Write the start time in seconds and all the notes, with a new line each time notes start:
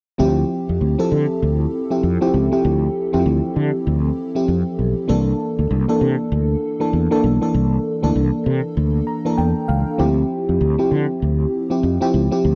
0.18 D2 F3 C4 E4 G4
0.69 F2
0.81 D2
0.98 F3 C4 E4 A4
1.12 D3
1.42 D2
1.90 F3 C4 E4 G4
2.03 F2
2.21 F3 C4 E4 G4
2.34 C#2
2.52 F3 C4 E4 G4
2.65 D2
3.13 F2 E3 C4 E4 G4
3.19 F3
3.26 D2
3.56 D3
3.87 D2
4.35 F3 C4 E4 G4
4.48 F2
4.79 B1
5.08 C2 E3 A#3 D4 A4
5.59 D2
5.71 C2
5.88 E3 A#3 D4 A4
6.01 C3
6.32 D2
6.80 E3 A#3 D4 A4
6.93 E2
7.11 E3 A#3 D4 A4
7.24 B1
7.41 E3 A#3 D4 A4
7.54 C2
8.03 D2 E3 A#3 D4 A4
8.15 C2
8.46 C3
8.77 D2
9.07 A#5
9.25 E3 A#3 D4 A4
9.38 E2 G5
9.68 C#2 F5
9.98 D2 F3 C4 E4 G4
10.49 F2
10.61 D2
10.78 F3 C4 E4 G4
10.91 D3
11.22 D2
11.70 F3 C4 E4 G4
11.83 F2
12.01 F3 C4 E4 G4
12.14 C#2
12.31 F3 C4 E4 G4
12.45 D2